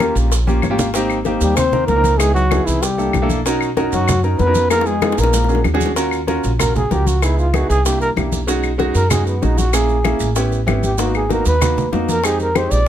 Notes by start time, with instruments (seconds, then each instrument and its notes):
Already playing: trombone A#3, trumpet A#4
0.00 grand piano A#3 C#4 F4 G4, high bongo, high conga, claves, maracas
0.15 upright bass A#1, high bongo, maracas
0.31 high bongo, high conga, maracas
0.47 grand piano A#3 C#4 F4 G4, high bongo, high conga, maracas
0.62 upright bass G#1, grand piano C#5, high bongo, low bongo, high conga, claves, maracas
0.70 grand piano A#3 C#4 F4 G4
0.78 grand piano F5, high bongo, low conga, maracas
0.94 grand piano A#3 C4 D#4 G4, high bongo, high conga, maracas
1.10 high conga, claves, maracas
1.25 grand piano A#3 C4 D#4 G4, high bongo, high conga, maracas
1.41 upright bass D#2, trombone G3, trumpet G4, high bongo, high conga, maracas
1.56 trombone C4, trumpet C5, high bongo, high conga, low conga, claves, maracas
1.72 grand piano A#3 C4 D#4 A#4, high bongo, high conga, low conga, maracas
1.87 upright bass C#2, trombone A#3, trumpet A#4, high bongo, low bongo, high conga, maracas
1.95 grand piano A#3 C4 D#4 A#4
2.04 high bongo, high conga, maracas
2.18 trombone G#3, grand piano B3 D#4 E4 G#4, trumpet G#4, high bongo, high conga, claves, maracas
2.34 trombone F#3, trumpet F#4, high conga, maracas
2.51 grand piano B3 D#4 E4 G#4, high bongo, high conga, claves, maracas
2.65 upright bass C2, trombone E3, trumpet E4, high bongo, maracas
2.82 trombone G3, trumpet G4, high bongo, high conga, maracas
2.98 grand piano A#3 D4 E4 A4, high bongo, high conga, maracas
3.13 upright bass B1, high bongo, low bongo, high conga, claves, maracas
3.22 grand piano A#3 D4 E4 A4
3.30 high bongo, high conga, maracas
3.46 grand piano C#4 D#4 F#4 A#4, high bongo, high conga, maracas
3.61 high conga, claves, maracas
3.77 grand piano C#4 D#4 F#4 A#4, high bongo, high conga, maracas
3.92 upright bass F#2, trombone F#3, trumpet F#4, high bongo, high conga, maracas
4.08 high bongo, high conga, low conga, claves, maracas
4.23 grand piano C#4 D#4 F#4 A#4, high bongo, high conga, maracas
4.39 upright bass F2, trombone B3, trumpet B4, high bongo, low bongo, high conga, maracas
4.46 grand piano C#4 D#4 F#4 A#4
4.55 high bongo, high conga, maracas
4.70 trombone A#3, grand piano B3 D#4 F4 G#4, trumpet A#4, high bongo, high conga, claves, maracas
4.81 high bongo
4.86 trombone G#3, trumpet G#4, high conga, maracas
5.02 grand piano B3 D#4 F4 G#4, high bongo, high conga, claves, maracas
5.12 high bongo
5.17 upright bass A#1, trombone A#3, trumpet A#4, maracas
5.24 low bongo
5.33 low bongo, high conga, maracas
5.44 low bongo
5.49 grand piano C#4 D4 F#4 G#4, high conga, maracas
5.55 low bongo
5.64 upright bass D#2, low bongo, high conga, claves, maracas
5.74 grand piano C#4 D4 F#4 G#4, low bongo
5.81 high conga, maracas
5.86 low bongo
5.96 grand piano C#4 F4 F#4 A#4, high bongo, high conga, maracas
6.11 high conga, claves, maracas
6.27 grand piano C#4 F4 F#4 A#4, high bongo, high conga, maracas
6.44 upright bass A#1, high bongo, high conga, maracas
6.59 grand piano C#4 F4 F#4 A#4, trumpet A#4, high bongo, high conga, low conga, claves, maracas
6.75 trumpet G#4, high bongo, high conga, low conga, maracas
6.91 upright bass C#2, grand piano C#4 F4 F#4 A#4, trumpet G4, high bongo, low bongo, high conga, maracas
7.07 trumpet F#4, high bongo, high conga, maracas
7.22 grand piano B3 D#4 E4 G#4, trumpet E4, high bongo, high conga, claves, maracas
7.38 trumpet F4, high conga, maracas
7.53 grand piano B3 D#4 E4 G#4, trumpet F#4, high bongo, high conga, claves, maracas
7.70 upright bass C2, trumpet G#4, high bongo, maracas
7.85 grand piano A#3 D4 E4 G4, trumpet G4, high bongo, high conga, maracas
8.01 trumpet A#4, high bongo, high conga, maracas
8.16 upright bass B1, grand piano A#3 D4 E4 G4, high bongo, low bongo, high conga, claves, maracas
8.32 high bongo, high conga, maracas
8.47 grand piano G#3 C#4 D#4 F#4, high bongo, high conga, maracas
8.63 high conga, claves, maracas
8.78 grand piano G#3 C#4 D#4 F#4, high bongo, high conga, maracas
8.95 upright bass F#2, trumpet A#4, high bongo, high conga, maracas
9.10 grand piano G#3 C#4 D#4 F#4, trumpet G#4, high bongo, high conga, low conga, claves, maracas
9.27 trumpet B3, high bongo, high conga, maracas
9.42 upright bass A#1, grand piano G#3 C#4 D#4 F#4, trumpet D#4, high bongo, low bongo, high conga, maracas
9.58 trumpet F#4, high bongo, high conga, maracas
9.73 grand piano A#3 C#4 E4 G#4, trumpet G#4, high bongo, high conga, claves, maracas
9.89 high conga, maracas
10.04 grand piano A#3 C#4 E4 G#4, high bongo, high conga, claves, maracas
10.20 upright bass A1, high bongo, maracas
10.36 grand piano B3 C#4 E4 G4, high bongo, high conga, maracas
10.52 high bongo, high conga, maracas
10.66 upright bass G#1, grand piano B3 C#4 E4 G4, high bongo, low bongo, high conga, claves, maracas
10.83 trumpet G4, high bongo, high conga, maracas
10.98 grand piano A#3 B3 D#4 F#4, trumpet F#4, high bongo, high conga, maracas
11.14 trumpet G#4, high conga, claves, maracas
11.29 grand piano A#3 B3 D#4 F#4, trumpet A#4, high bongo, high conga, maracas
11.45 upright bass D#2, trumpet B4, high bongo, high conga, maracas
11.61 grand piano A#3 B3 D#4 F#4, high bongo, high conga, low conga, claves, maracas
11.77 high bongo, high conga, low conga, maracas
11.92 upright bass F2, grand piano A#3 B3 D#4 F#4, high bongo, low bongo, high conga, maracas
12.08 trumpet A#4, high bongo, high conga, maracas
12.24 grand piano G#3 C4 D#4 G4, trumpet G#4, high bongo, high conga, claves, maracas
12.40 trumpet A#4, high conga, maracas
12.55 grand piano G#3 C4 D#4 G4, trumpet C5, high bongo, high conga, claves, maracas
12.71 upright bass A#1, trumpet D5, high bongo, maracas